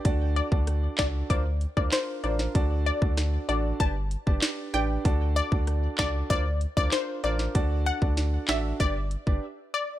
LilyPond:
<<
  \new Staff \with { instrumentName = "Synth pluck" } { \time 4/4 \key d \major \tempo 4 = 96 r8 d''16 r8. d''8 d''16 r8 d''16 c''16 r16 d''16 r16 | r8 d''16 r8. d''8 a''8. r8. g''16 r16 | r8 d''16 r8. d''8 d''16 r8 d''16 c''16 r16 d''16 r16 | r8 fis''16 r8. e''8 d''8. r8. d''16 r16 | }
  \new Staff \with { instrumentName = "Grand piano" } { \time 4/4 \key d \major <d' fis' a' d''>8. <d' fis' a' d''>8. <d' fis' a' d''>8 <d' f' bes' c''>16 r8 <d' f' bes' c''>8. <d' f' bes' c''>8 | <d' fis' a' d''>8. <d' fis' a' d''>8. <d' fis' a' d''>8 <d' g' b' d''>16 r8 <d' g' b' d''>8. <d' g' b' d''>8 | <d' fis' a' d''>8. <d' fis' a' d''>8. <d' fis' a' d''>8 <d' f' bes' c''>16 r8 <d' f' bes' c''>8. <d' f' bes' c''>8 | <d' fis' a' d''>8. <d' fis' a' d''>8. <d' fis' a' d''>8 <d' g' b' d''>16 r8 <d' g' b' d''>16 r4 | }
  \new Staff \with { instrumentName = "Sub bass" } { \clef bass \time 4/4 \key d \major d,8. d,8. cis,8 d,8. d,16 r8 a,,8 | d,8. d,8. a,,8 g,,8. g,,16 r8 a,,8 | d,8. d,8. cis,8 d,8. d,16 r8 a,,8 | d,8. d,8. a,,8 g,,8. g,,16 r4 | }
  \new DrumStaff \with { instrumentName = "Drums" } \drummode { \time 4/4 <hh bd>8 hh16 bd16 <hh ss>8 <hc hh bd sn>8 <hh bd>8 hh16 bd16 <hc hh sn>8 hh16 sn16 | <hh bd>8 hh16 bd16 <hh ss sn>8 hh8 <hh bd>8 hh16 bd16 <hc hh sn>8 hh8 | <hh bd>8 hh16 bd16 <hh ss>8 <hc hh bd sn>8 <hh bd>8 hh16 bd16 <hc hh sn>8 hh16 sn16 | <hh bd>8 hh16 bd16 <hh sn>8 <hc hh sn>8 <hh bd>8 hh16 bd16 r4 | }
>>